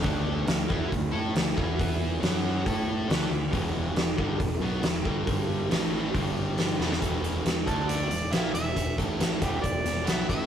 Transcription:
<<
  \new Staff \with { instrumentName = "Harmonica" } { \time 4/4 \key d \lydian \tempo 4 = 138 r1 | r1 | r1 | r1 |
r4. a'8 d''4 e''8 e''8~ | e''8 r4 g'8 d''4 e''8 e''8 | }
  \new Staff \with { instrumentName = "Distorted electric guitar" } { \clef bass \time 4/4 \key d \lydian <d a d'>4 <d a>8 <e b e'>8 <d a>8 <a e' a'>8 <d a>8 <e b e'>8~ | <e b e'>4 <fis cis' fis'>4 <a e' a'>4 <d a d'>8 <d a>8 | <e, b, e>4 <e, b,>8 <g, d g>8 <e, b,>8 <b, fis b>8 <e, b,>8 <g, d g>8~ | <g, d g>4 <a, e a>4 <g, d g>4. <e, b, e>8 |
<e, b, e>4 <e, b,>8 <d a d'>4 <e, b,>8 <ais, f ais>8 <e, b,>8 | <e, b,>8 <a, e a>4 <e, b, e>8 <e, b,>8 <e, b,>8 <b, fis b>8 <a, e a>8 | }
  \new Staff \with { instrumentName = "Fingered electric bass" } { \clef bass \time 4/4 \key d \lydian d,4 d,8 e,8 d,8 a,8 d,8 e,8~ | e,4 fis,4 a,4 d,8 d,8 | e,,4 e,,8 g,,8 e,,8 b,,8 e,,8 g,,8~ | g,,4 a,,4 g,,4. e,,8 |
e,,4 e,,8 d,4 e,,8 ais,,8 e,,8 | e,,8 a,,4 e,,8 e,,8 e,,8 b,,8 a,,8 | }
  \new DrumStaff \with { instrumentName = "Drums" } \drummode { \time 4/4 <hho bd>4 <hho sn>8 bd8 <hho bd>4 <hho sn>8 bd8 | <hho bd>4 <hho sn>4 <hho bd>4 <hho sn>4 | <hho bd>4 <hho sn>8 bd8 <hho bd>4 <hho sn>8 bd8 | <hho bd>4 <hho sn>4 <hho bd>4 <hho sn>8 sn16 sn16 |
<hh bd>8 hh8 <hh sn>8 <hh bd>8 hh8 hh8 <hh sn>8 hh8 | <hh bd>8 <hh bd>8 <hh sn>8 <hh bd>8 <hh bd>8 <hh sn>8 <hh sn>8 <hh bd>8 | }
>>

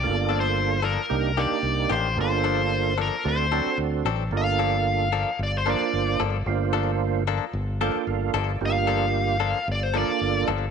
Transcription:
<<
  \new Staff \with { instrumentName = "Lead electric guitar" } { \time 4/4 \key g \minor \tempo 4 = 112 \tuplet 3/2 { d''4 c''8~ } c''8 bes'4 d''4 c''8 | c''4. bes'8 c''4 r4 | f''2 d''16 c''16 d''4 r8 | r1 |
f''2 d''16 c''16 d''4 r8 | }
  \new Staff \with { instrumentName = "Tonewheel organ" } { \time 4/4 \key g \minor << { r1 | r1 | r1 | r2 r8 g''8 f''8 d''8 |
r1 | } \\ { <bes d' f' a'>4. r8 <bes d' ees' g'>8 <bes d' ees' g'>4 r8 | <bes d' f' a'>4. r8 <c' d' fis' a'>8 <c' d' fis' a'>4 r8 | <bes d' f' a'>4. r4 <bes d' f' c''>4 r8 | <bes d' f' c''>4. r4 <bes d' f' a'>4 r8 |
<bes d' f' g'>4. r4 <bes d' f' a'>4 r8 | } >> }
  \new Staff \with { instrumentName = "Clean electric guitar" } { \time 4/4 \key g \minor r8 <f bes d' a'>8 r8 <f bes d' a'>8 r8 <ees bes d' g'>8 r8 <ees bes d' g'>8 | r8 <f bes d' a'>8 r8 <f bes d' a'>8 r8 <fis c' d' a'>8 r8 <fis c' d' a'>8 | r8 <f bes d' a'>8 r8 <f bes d' a'>8 r8 <f bes d' a'>8 r8 <f bes d' a'>8 | r8 <f bes d' a'>8 r8 <f bes d' a'>8 r8 <f bes d' a'>8 r8 <f bes d' a'>8 |
r8 <f bes d' a'>8 r8 <f bes d' a'>8 r8 <f bes d' a'>8 r8 <f bes d' a'>8 | }
  \new Staff \with { instrumentName = "Fingered electric bass" } { \clef bass \time 4/4 \key g \minor g,,2 c,8. r16 c,8 a,,8 | g,,2 d,8. r16 d,8 a,,8 | g,,2 g,,8. r16 g,,8 g,,8 | g,,2 g,,8. r16 g,,8 g,,8 |
g,,2 g,,8. r16 g,,8 g,,8 | }
>>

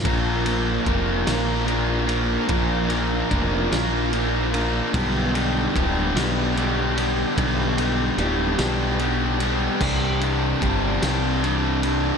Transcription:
<<
  \new Staff \with { instrumentName = "Distorted electric guitar" } { \time 6/8 \key bes \mixolydian \tempo 4. = 49 <bes, f bes d' f' bes'>8 <bes d' f' bes'>8 <bes d' f' bes'>8 <bes d' f' bes'>8 <bes d' f' bes'>8 <bes d' f' bes'>8 | <bes, f bes d' f' bes'>8 <bes d' f' bes'>8 <bes d' f' bes'>8 <bes d' f' bes'>8 <bes d' f' bes'>8 <bes d' f' bes'>8 | <g, d g b d' g'>8 <g b d' g'>8 <g b d' g'>8 <g b d' g'>8 <g b d' g'>8 <g b d' g'>8 | <g, d g b d' g'>8 <g b d' g'>8 <g b d' g'>8 <g b d' g'>8 <g b d' g'>8 <g b d' g'>8 |
<c, g, c g d'>8 <c g d'>8 <g, c g d'>8 <c g d'>8 <g, c g d'>8 <c g d'>8 | }
  \new Staff \with { instrumentName = "Fingered electric bass" } { \clef bass \time 6/8 \key bes \mixolydian bes,,4 f,,8 bes,,4. | bes,,4 f,,8 bes,,4. | b,,4 d,,8 b,,4. | b,,4 d,,8 b,,4. |
c,4 g,,8 c,4. | }
  \new DrumStaff \with { instrumentName = "Drums" } \drummode { \time 6/8 <bd cymr>8 cymr8 <bd cymr>8 <cymr sn>8 cymr8 cymr8 | <bd cymr>8 cymr8 <bd cymr>8 <cymr sn>8 cymr8 cymr8 | <bd cymr>8 cymr8 <bd cymr>8 <cymr sn>8 cymr8 cymr8 | <bd cymr>8 cymr8 cymr8 <cymr sn>8 cymr8 cymr8 |
<cymc bd>8 cymr8 <bd cymr>8 <cymr sn>8 cymr8 cymr8 | }
>>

